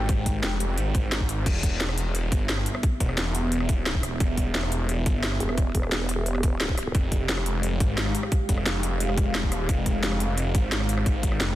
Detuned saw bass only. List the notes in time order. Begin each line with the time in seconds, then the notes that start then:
Already playing: G#1
0.43 F1
0.78 G#1
1.46 E1
2.32 G1
3.00 E1
4.20 E1
5.06 G1
6.95 F1
7.80 G#1
8.49 F1
9.33 E1
9.56 D#1
9.69 F1
10.55 G#1
10.89 G#1
11.40 F1